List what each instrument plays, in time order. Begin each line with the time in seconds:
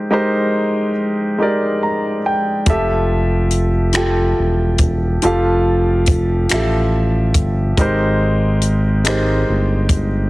Already playing: grand piano G#3 D#4 G4 A#4 C5
0.10 grand piano G#3 D#4 G4 A#4 C5
1.38 grand piano G#3 D#4 G4 A#4
1.43 grand piano D5
1.83 grand piano A#5
2.26 grand piano G5
2.66 analog synth bass F1, grand piano F3 F4 G4 A4 E5, kick, closed hi-hat
3.51 closed hi-hat
3.93 grand piano F3 F4 G4 A4, finger snap, closed hi-hat
3.97 grand piano G5
4.39 analog synth bass E1
4.78 analog synth bass E1, kick, closed hi-hat
5.22 analog synth bass F1, grand piano F3 F4 G4 A4, closed hi-hat
5.26 grand piano F5
6.06 kick, closed hi-hat
6.49 analog synth bass A1, grand piano F3 F4 G4 A4, finger snap, closed hi-hat
6.53 grand piano E5
7.34 analog synth bass G1, kick, closed hi-hat
7.77 analog synth bass G#1, grand piano G#3 D#4 G4 A#4 C5, kick, closed hi-hat
8.62 closed hi-hat
9.05 grand piano G#3 D#4 G4 A#4 C5, finger snap, closed hi-hat
9.50 analog synth bass G1
9.89 analog synth bass G1, kick, closed hi-hat